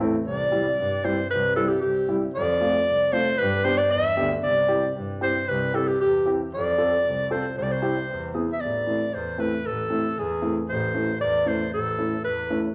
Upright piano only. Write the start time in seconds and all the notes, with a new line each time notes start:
0.00 A3 C4 E4
0.52 G3 C4 E4
1.04 G3 C4 E4
1.56 G3 C4 E4
2.08 G3 C4 E4
2.60 A3 C4 F4
3.12 A3 C4 F4
3.64 B3 D4 G4
4.17 B3 D4 G4
4.68 C4 E4 G4
5.21 C4 E4 G4
5.74 C4 E4 G4
6.26 C4 E4 G4
6.78 C4 F4 A4
7.31 C4 F4 A4
7.82 C4 E4 G4
8.34 B3 E4 G#4
8.87 A3 C4 E4
9.38 A3 C4 E4
9.90 A3 C4 E4
10.42 A3 C4 E4
10.94 A3 C#4 E4
11.46 A3 C#4 E4
11.98 A3 C#4 E4
12.50 A3 C#4 E4